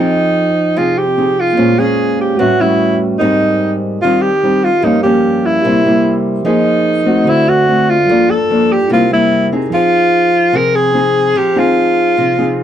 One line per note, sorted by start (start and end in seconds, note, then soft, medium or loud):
0.00 0.75 F3 medium
0.00 1.53 F3 soft
0.00 0.50 C4 medium
0.00 0.50 D#4 medium
0.00 0.79 D#4 medium
0.00 1.54 F4 soft
0.00 0.51 G#4 medium
0.00 1.55 C5 soft
0.00 1.55 D#5 soft
0.00 1.56 G5 soft
0.77 1.56 C3 medium
0.77 1.03 C4 soft
0.77 1.03 D#4 medium
0.77 0.99 F4 medium
0.77 1.03 G#4 medium
0.98 1.42 G4 medium
1.17 1.55 C4 soft
1.17 1.55 D#4 medium
1.17 1.55 G#4 medium
1.40 1.80 F4 medium
1.53 2.35 A#3 soft
1.53 2.36 G#4 soft
1.53 2.37 C5 soft
1.57 2.37 A#2 medium
1.57 1.70 G#3 medium
1.57 1.70 C#4 medium
1.57 1.70 F4 medium
1.57 2.37 C#5 soft
1.57 2.38 F5 soft
1.79 2.38 G#3 medium
1.79 2.38 C#4 medium
1.79 2.38 F4 medium
1.79 2.19 G#4 medium
2.21 2.41 G4 medium
2.35 3.18 A2 medium
2.35 3.17 A3 soft
2.35 3.17 F#4 soft
2.35 2.62 F#4 medium
2.35 3.19 B4 soft
2.40 2.51 G3 medium
2.40 2.51 C#4 medium
2.40 2.52 F#4 medium
2.40 3.19 C#5 soft
2.40 3.20 E5 medium
2.60 3.17 G3 medium
2.60 3.17 C#4 medium
2.60 3.01 E4 medium
2.60 3.18 F#4 medium
3.19 4.00 G#2 medium
3.19 3.98 G3 medium
3.19 3.99 C4 medium
3.19 3.77 D#4 medium
3.19 3.99 D#4 medium
3.19 4.79 G4 soft
3.19 4.80 A#4 soft
3.19 4.80 C5 soft
3.23 4.81 D#5 medium
4.01 4.82 D#3 medium
4.01 4.29 G3 soft
4.01 4.29 C4 medium
4.01 4.29 D#4 medium
4.01 4.23 F4 medium
4.22 4.66 G4 loud
4.43 4.69 G3 medium
4.43 4.69 C4 soft
4.43 4.69 D#4 medium
4.64 4.85 F4 medium
4.81 5.62 G2 medium
4.81 4.95 F3 medium
4.81 4.95 A#3 medium
4.81 4.95 C#4 medium
4.81 5.02 D#4 medium
4.81 5.61 G4 soft
4.81 5.63 A#4 soft
4.81 5.64 C#5 soft
4.87 5.65 F5 soft
5.03 5.63 F3 medium
5.03 5.63 A#3 medium
5.03 5.64 C#4 medium
5.03 5.47 G4 medium
5.46 6.26 E4 medium
5.62 6.44 C3 medium
5.62 5.81 G3 medium
5.62 5.82 A#3 medium
5.62 5.82 E4 medium
5.62 6.43 G4 soft
5.62 6.44 A#4 soft
5.66 6.45 C5 soft
5.66 6.46 E5 medium
5.86 6.43 G3 medium
5.86 6.43 A#3 medium
5.86 6.43 E4 medium
6.43 7.24 F3 soft
6.43 7.05 F3 medium
6.43 7.03 A#3 medium
6.43 7.04 D#4 medium
6.43 7.31 D#4 medium
6.43 7.25 G#4 soft
6.43 7.03 G#4 medium
6.43 7.26 A#4 soft
6.48 7.27 C5 soft
6.48 7.27 D#5 soft
7.06 7.64 A3 medium
7.06 7.64 C4 medium
7.06 7.65 F#4 medium
7.25 8.06 D3 soft
7.25 8.07 D3 medium
7.25 8.06 F#4 soft
7.25 8.07 A4 soft
7.25 8.07 C5 soft
7.29 7.50 E4 medium
7.29 8.08 E5 soft
7.49 7.91 F#4 medium
7.68 7.94 A3 medium
7.68 7.95 C4 medium
7.68 7.95 F#4 medium
7.90 8.32 F4 loud
8.06 8.89 G2 medium
8.06 8.35 F3 medium
8.06 8.87 G3 soft
8.06 8.88 F4 soft
8.06 8.89 A4 soft
8.10 8.35 A#3 medium
8.10 8.90 A#3 soft
8.10 8.36 D4 medium
8.10 8.90 D5 medium
8.30 8.74 A4 loud
8.50 8.77 F3 medium
8.50 8.77 A#3 medium
8.50 8.78 D4 medium
8.72 8.91 G4 medium
8.88 9.70 C3 medium
8.88 9.02 G3 medium
8.88 9.02 A#3 medium
8.88 9.69 E4 soft
8.88 9.02 E4 medium
8.88 9.70 G4 soft
8.92 9.11 F4 medium
8.92 9.71 A#4 soft
8.92 9.72 C5 medium
9.11 9.48 G3 medium
9.11 9.49 A#3 medium
9.11 9.49 E4 medium
9.11 9.50 E4 medium
9.52 10.30 C4 medium
9.52 10.30 D#4 medium
9.52 10.30 G#4 medium
9.70 12.63 F3 soft
9.70 10.51 F3 medium
9.70 12.63 D#4 soft
9.70 10.58 F4 loud
9.75 12.63 G#4 soft
9.75 12.63 C5 soft
10.53 11.33 C3 medium
10.53 10.90 C4 medium
10.53 10.91 D#4 medium
10.53 10.91 G#4 medium
10.53 10.77 A#4 loud
10.76 11.39 G#4 loud
10.94 11.52 C4 medium
10.94 11.52 D#4 medium
10.94 11.52 G#4 medium
11.36 12.15 F3 medium
11.36 11.60 G4 loud
11.56 12.34 C4 medium
11.56 12.34 D#4 medium
11.56 12.63 F4 loud
11.56 12.34 G#4 medium
12.18 12.63 C3 medium
12.38 12.63 C4 medium
12.38 12.63 D#4 medium
12.38 12.63 G#4 medium